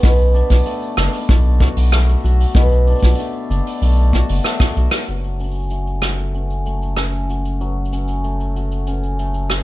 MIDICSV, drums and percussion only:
0, 0, Header, 1, 2, 480
1, 0, Start_track
1, 0, Key_signature, 3, "minor"
1, 0, Tempo, 631579
1, 19, Time_signature, 4, 2, 24, 8
1, 7319, End_track
2, 0, Start_track
2, 0, Title_t, "Drums"
2, 25, Note_on_c, 9, 36, 118
2, 25, Note_on_c, 9, 46, 54
2, 30, Note_on_c, 9, 69, 59
2, 101, Note_off_c, 9, 36, 0
2, 101, Note_off_c, 9, 46, 0
2, 106, Note_off_c, 9, 69, 0
2, 145, Note_on_c, 9, 69, 39
2, 221, Note_off_c, 9, 69, 0
2, 267, Note_on_c, 9, 69, 83
2, 343, Note_off_c, 9, 69, 0
2, 380, Note_on_c, 9, 46, 67
2, 381, Note_on_c, 9, 36, 56
2, 381, Note_on_c, 9, 69, 45
2, 456, Note_off_c, 9, 46, 0
2, 457, Note_off_c, 9, 36, 0
2, 457, Note_off_c, 9, 69, 0
2, 496, Note_on_c, 9, 46, 60
2, 506, Note_on_c, 9, 69, 54
2, 572, Note_off_c, 9, 46, 0
2, 582, Note_off_c, 9, 69, 0
2, 626, Note_on_c, 9, 69, 39
2, 702, Note_off_c, 9, 69, 0
2, 739, Note_on_c, 9, 37, 70
2, 744, Note_on_c, 9, 69, 73
2, 815, Note_off_c, 9, 37, 0
2, 820, Note_off_c, 9, 69, 0
2, 860, Note_on_c, 9, 46, 68
2, 863, Note_on_c, 9, 69, 45
2, 936, Note_off_c, 9, 46, 0
2, 939, Note_off_c, 9, 69, 0
2, 980, Note_on_c, 9, 36, 111
2, 982, Note_on_c, 9, 46, 61
2, 985, Note_on_c, 9, 69, 57
2, 1056, Note_off_c, 9, 36, 0
2, 1058, Note_off_c, 9, 46, 0
2, 1061, Note_off_c, 9, 69, 0
2, 1219, Note_on_c, 9, 36, 101
2, 1228, Note_on_c, 9, 69, 76
2, 1295, Note_off_c, 9, 36, 0
2, 1304, Note_off_c, 9, 69, 0
2, 1341, Note_on_c, 9, 46, 81
2, 1350, Note_on_c, 9, 69, 55
2, 1417, Note_off_c, 9, 46, 0
2, 1426, Note_off_c, 9, 69, 0
2, 1462, Note_on_c, 9, 37, 72
2, 1463, Note_on_c, 9, 46, 57
2, 1538, Note_off_c, 9, 37, 0
2, 1539, Note_off_c, 9, 46, 0
2, 1590, Note_on_c, 9, 69, 55
2, 1593, Note_off_c, 9, 69, 0
2, 1593, Note_on_c, 9, 69, 16
2, 1669, Note_off_c, 9, 69, 0
2, 1673, Note_on_c, 9, 69, 24
2, 1712, Note_off_c, 9, 69, 0
2, 1712, Note_on_c, 9, 69, 80
2, 1752, Note_off_c, 9, 69, 0
2, 1752, Note_on_c, 9, 69, 30
2, 1825, Note_off_c, 9, 69, 0
2, 1825, Note_on_c, 9, 69, 55
2, 1828, Note_on_c, 9, 46, 70
2, 1901, Note_off_c, 9, 69, 0
2, 1904, Note_off_c, 9, 46, 0
2, 1937, Note_on_c, 9, 36, 103
2, 1945, Note_on_c, 9, 46, 58
2, 1949, Note_on_c, 9, 69, 56
2, 2013, Note_off_c, 9, 36, 0
2, 2021, Note_off_c, 9, 46, 0
2, 2025, Note_off_c, 9, 69, 0
2, 2067, Note_on_c, 9, 69, 41
2, 2143, Note_off_c, 9, 69, 0
2, 2182, Note_on_c, 9, 69, 41
2, 2213, Note_off_c, 9, 69, 0
2, 2213, Note_on_c, 9, 69, 43
2, 2242, Note_off_c, 9, 69, 0
2, 2242, Note_on_c, 9, 69, 50
2, 2273, Note_off_c, 9, 69, 0
2, 2273, Note_on_c, 9, 69, 56
2, 2299, Note_on_c, 9, 36, 62
2, 2300, Note_on_c, 9, 46, 73
2, 2302, Note_off_c, 9, 69, 0
2, 2302, Note_on_c, 9, 69, 60
2, 2306, Note_off_c, 9, 69, 0
2, 2306, Note_on_c, 9, 69, 51
2, 2331, Note_off_c, 9, 69, 0
2, 2331, Note_on_c, 9, 69, 69
2, 2362, Note_off_c, 9, 69, 0
2, 2362, Note_on_c, 9, 69, 69
2, 2375, Note_off_c, 9, 36, 0
2, 2376, Note_off_c, 9, 46, 0
2, 2393, Note_off_c, 9, 69, 0
2, 2393, Note_on_c, 9, 69, 73
2, 2425, Note_off_c, 9, 69, 0
2, 2425, Note_on_c, 9, 69, 58
2, 2428, Note_on_c, 9, 46, 62
2, 2501, Note_off_c, 9, 69, 0
2, 2504, Note_off_c, 9, 46, 0
2, 2667, Note_on_c, 9, 69, 92
2, 2743, Note_off_c, 9, 69, 0
2, 2786, Note_on_c, 9, 46, 66
2, 2789, Note_on_c, 9, 69, 49
2, 2862, Note_off_c, 9, 46, 0
2, 2865, Note_off_c, 9, 69, 0
2, 2903, Note_on_c, 9, 46, 62
2, 2909, Note_on_c, 9, 69, 66
2, 2979, Note_off_c, 9, 46, 0
2, 2985, Note_off_c, 9, 69, 0
2, 3018, Note_on_c, 9, 69, 35
2, 3094, Note_off_c, 9, 69, 0
2, 3141, Note_on_c, 9, 36, 53
2, 3145, Note_on_c, 9, 69, 91
2, 3217, Note_off_c, 9, 36, 0
2, 3221, Note_off_c, 9, 69, 0
2, 3261, Note_on_c, 9, 46, 82
2, 3337, Note_off_c, 9, 46, 0
2, 3378, Note_on_c, 9, 37, 55
2, 3379, Note_on_c, 9, 46, 60
2, 3385, Note_on_c, 9, 69, 48
2, 3454, Note_off_c, 9, 37, 0
2, 3455, Note_off_c, 9, 46, 0
2, 3461, Note_off_c, 9, 69, 0
2, 3496, Note_on_c, 9, 36, 107
2, 3496, Note_on_c, 9, 37, 55
2, 3500, Note_on_c, 9, 69, 42
2, 3572, Note_off_c, 9, 36, 0
2, 3572, Note_off_c, 9, 37, 0
2, 3576, Note_off_c, 9, 69, 0
2, 3620, Note_on_c, 9, 69, 96
2, 3696, Note_off_c, 9, 69, 0
2, 3734, Note_on_c, 9, 37, 81
2, 3734, Note_on_c, 9, 46, 76
2, 3746, Note_on_c, 9, 69, 48
2, 3810, Note_off_c, 9, 37, 0
2, 3810, Note_off_c, 9, 46, 0
2, 3822, Note_off_c, 9, 69, 0
2, 3860, Note_on_c, 9, 69, 51
2, 3936, Note_off_c, 9, 69, 0
2, 3984, Note_on_c, 9, 69, 35
2, 4060, Note_off_c, 9, 69, 0
2, 4101, Note_on_c, 9, 69, 64
2, 4132, Note_off_c, 9, 69, 0
2, 4132, Note_on_c, 9, 69, 52
2, 4162, Note_off_c, 9, 69, 0
2, 4162, Note_on_c, 9, 69, 42
2, 4190, Note_off_c, 9, 69, 0
2, 4190, Note_on_c, 9, 69, 36
2, 4219, Note_off_c, 9, 69, 0
2, 4219, Note_on_c, 9, 69, 37
2, 4251, Note_off_c, 9, 69, 0
2, 4251, Note_on_c, 9, 69, 24
2, 4280, Note_off_c, 9, 69, 0
2, 4280, Note_on_c, 9, 69, 20
2, 4311, Note_off_c, 9, 69, 0
2, 4311, Note_on_c, 9, 69, 16
2, 4333, Note_off_c, 9, 69, 0
2, 4333, Note_on_c, 9, 69, 48
2, 4409, Note_off_c, 9, 69, 0
2, 4462, Note_on_c, 9, 69, 35
2, 4538, Note_off_c, 9, 69, 0
2, 4572, Note_on_c, 9, 69, 63
2, 4574, Note_on_c, 9, 37, 67
2, 4648, Note_off_c, 9, 69, 0
2, 4650, Note_off_c, 9, 37, 0
2, 4703, Note_on_c, 9, 69, 41
2, 4779, Note_off_c, 9, 69, 0
2, 4823, Note_on_c, 9, 69, 48
2, 4899, Note_off_c, 9, 69, 0
2, 4941, Note_on_c, 9, 69, 35
2, 5017, Note_off_c, 9, 69, 0
2, 5063, Note_on_c, 9, 69, 77
2, 5139, Note_off_c, 9, 69, 0
2, 5184, Note_on_c, 9, 69, 37
2, 5260, Note_off_c, 9, 69, 0
2, 5294, Note_on_c, 9, 37, 58
2, 5304, Note_on_c, 9, 69, 45
2, 5370, Note_off_c, 9, 37, 0
2, 5380, Note_off_c, 9, 69, 0
2, 5420, Note_on_c, 9, 69, 33
2, 5496, Note_off_c, 9, 69, 0
2, 5545, Note_on_c, 9, 69, 78
2, 5621, Note_off_c, 9, 69, 0
2, 5663, Note_on_c, 9, 69, 44
2, 5739, Note_off_c, 9, 69, 0
2, 5783, Note_on_c, 9, 69, 52
2, 5859, Note_off_c, 9, 69, 0
2, 5967, Note_on_c, 9, 69, 33
2, 6024, Note_off_c, 9, 69, 0
2, 6024, Note_on_c, 9, 69, 71
2, 6100, Note_off_c, 9, 69, 0
2, 6140, Note_on_c, 9, 69, 43
2, 6216, Note_off_c, 9, 69, 0
2, 6264, Note_on_c, 9, 69, 49
2, 6340, Note_off_c, 9, 69, 0
2, 6387, Note_on_c, 9, 69, 33
2, 6463, Note_off_c, 9, 69, 0
2, 6508, Note_on_c, 9, 69, 68
2, 6584, Note_off_c, 9, 69, 0
2, 6623, Note_on_c, 9, 69, 38
2, 6699, Note_off_c, 9, 69, 0
2, 6741, Note_on_c, 9, 69, 54
2, 6817, Note_off_c, 9, 69, 0
2, 6865, Note_on_c, 9, 69, 36
2, 6941, Note_off_c, 9, 69, 0
2, 6985, Note_on_c, 9, 69, 72
2, 7061, Note_off_c, 9, 69, 0
2, 7098, Note_on_c, 9, 69, 41
2, 7174, Note_off_c, 9, 69, 0
2, 7218, Note_on_c, 9, 37, 57
2, 7224, Note_on_c, 9, 69, 50
2, 7294, Note_off_c, 9, 37, 0
2, 7300, Note_off_c, 9, 69, 0
2, 7319, End_track
0, 0, End_of_file